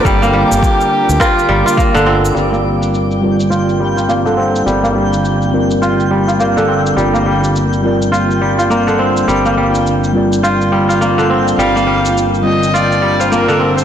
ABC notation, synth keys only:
X:1
M:4/4
L:1/8
Q:"Swing 16ths" 1/4=104
K:Gm
V:1 name="Synth keys"
z8 | [G,CFBd]3 [G,CFBd]3 [G,CFd]2 | [G,CFBd]3 [G,CFBd]3 [G,CFBd]2 | [G,CFBd]3 [G,CFBd]3 [G,CFBd]2 |
[G,CFBd]3 [G,CFBd]3 [G,CFBd] z | [G,CFBd]3 [G,CFBd]3 [G,CFBd]2 |]